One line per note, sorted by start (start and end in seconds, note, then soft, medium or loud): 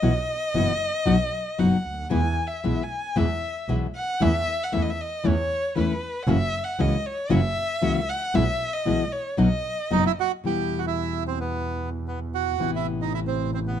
0.00 0.24 B1 medium
0.00 0.11 B2 medium
0.00 0.11 E3 medium
0.00 0.11 B3 medium
0.00 0.11 E4 medium
0.00 0.12 F#4 medium
0.00 1.61 D#5 loud
0.54 0.77 F#1 medium
0.54 0.71 B2 medium
0.54 0.71 E3 medium
0.54 0.71 B3 medium
0.54 0.72 E4 medium
0.54 0.72 F#4 medium
1.05 1.29 B1 medium
1.05 1.15 B2 medium
1.05 1.15 F#3 medium
1.05 1.15 B3 medium
1.05 1.15 D#4 medium
1.05 1.16 F#4 medium
1.58 1.81 F#1 medium
1.58 1.76 B2 medium
1.58 1.76 F#3 medium
1.58 1.76 B3 medium
1.58 1.76 D#4 medium
1.58 1.76 F#4 medium
1.58 2.12 F#5 medium
1.86 2.11 D2 soft
2.10 2.34 E2 medium
2.10 2.20 B2 medium
2.10 2.20 E3 medium
2.10 2.20 G#3 medium
2.10 2.20 B3 medium
2.10 2.20 E4 medium
2.10 2.49 G#5 medium
2.47 2.84 E5 medium
2.64 2.87 B1 medium
2.64 2.81 B2 medium
2.64 2.81 E3 medium
2.64 2.81 G#3 medium
2.64 2.81 B3 medium
2.64 2.82 E4 medium
2.83 3.18 G#5 medium
3.16 3.38 E2 medium
3.16 3.25 B2 medium
3.16 3.25 E3 medium
3.16 3.26 G#3 medium
3.16 3.26 B3 medium
3.16 3.26 E4 medium
3.16 3.69 E5 medium
3.69 3.91 B1 medium
3.69 3.86 B2 medium
3.69 3.86 E3 medium
3.69 3.86 G#3 medium
3.69 3.86 B3 medium
3.69 3.86 E4 medium
3.96 4.24 F#5 medium
4.20 4.43 E2 medium
4.20 4.30 E3 medium
4.20 4.30 A3 medium
4.20 4.30 C#4 medium
4.20 4.30 E4 medium
4.20 4.65 E5 loud
4.63 4.74 F#5 medium
4.72 4.95 E2 medium
4.72 4.89 E3 medium
4.72 4.90 A3 medium
4.72 4.90 C#4 medium
4.72 4.90 E4 medium
4.72 4.84 E5 medium
4.82 4.92 D#5 medium
4.90 5.02 E5 medium
5.01 5.28 D#5 medium
5.24 5.47 E2 medium
5.24 5.33 E3 medium
5.24 5.33 A3 medium
5.24 5.33 C#4 medium
5.24 5.34 E4 medium
5.24 5.77 C#5 loud
5.75 5.98 E2 medium
5.75 5.92 E3 medium
5.75 5.93 A3 medium
5.75 5.93 C#4 medium
5.75 5.93 E4 medium
5.75 6.24 B4 medium
6.23 6.36 C#3 medium
6.23 6.31 F#5 medium
6.27 6.49 F#1 medium
6.27 6.36 E3 medium
6.27 6.37 A#3 medium
6.27 6.37 C#4 medium
6.27 6.37 F#4 medium
6.27 6.65 E5 medium
6.64 6.82 F#5 medium
6.79 7.01 C#2 medium
6.79 6.95 C#3 medium
6.79 6.95 E3 medium
6.79 6.96 A#3 medium
6.79 6.96 C#4 medium
6.79 6.96 F#4 medium
6.79 7.07 D#5 medium
7.06 7.33 C#5 medium
7.29 7.53 F#1 medium
7.29 7.39 C#3 medium
7.29 7.39 E3 medium
7.29 7.39 A#3 medium
7.29 7.39 C#4 medium
7.29 7.39 F#4 loud
7.29 8.11 E5 loud
7.82 8.04 C#2 medium
7.82 7.99 C#3 medium
7.82 7.99 E3 medium
7.82 7.99 A#3 medium
7.82 7.99 C#4 medium
7.82 7.99 F#4 medium
8.09 8.36 F#5 medium
8.34 8.56 B1 medium
8.34 8.43 B2 medium
8.34 8.43 E3 medium
8.34 8.43 G#3 medium
8.34 8.43 B3 medium
8.34 8.43 E4 medium
8.34 8.75 E5 loud
8.73 9.14 D#5 medium
8.85 9.08 B1 medium
8.85 9.02 B2 medium
8.85 9.03 E3 medium
8.85 9.03 G#3 medium
8.85 9.03 B3 medium
8.85 9.03 E4 medium
9.12 9.39 C#5 medium
9.37 9.61 B1 medium
9.37 9.47 B2 medium
9.37 9.47 F#3 medium
9.37 9.47 B3 medium
9.37 9.47 D#4 medium
9.37 9.47 F#4 medium
9.37 10.18 D#5 medium
9.90 10.14 F#1 medium
9.90 10.08 B2 medium
9.90 10.08 F#3 medium
9.90 10.09 B3 medium
9.90 10.09 D#4 medium
9.90 10.04 D#4 medium
9.90 10.09 F#4 medium
10.06 10.12 E4 medium
10.20 10.32 F#4 medium
10.44 12.49 E2 medium
10.44 12.58 B2 soft
10.44 12.58 E3 medium
10.44 12.58 G3 medium
10.44 12.59 B3 medium
10.44 12.59 E4 medium
10.44 10.80 G4 medium
10.79 10.86 F#4 soft
10.87 11.24 E4 medium
11.27 11.39 C4 medium
11.40 11.90 B3 medium
12.08 12.20 B3 medium
12.34 12.71 F#4 medium
12.59 13.80 A1 medium
12.59 13.80 C3 medium
12.59 13.80 E3 medium
12.59 13.80 B3 medium
12.59 13.80 E4 medium
12.76 12.87 E4 medium
13.02 13.13 D#4 medium
13.14 13.20 E4 medium
13.27 13.51 C4 medium
13.54 13.59 C4 medium
13.67 13.80 B3 medium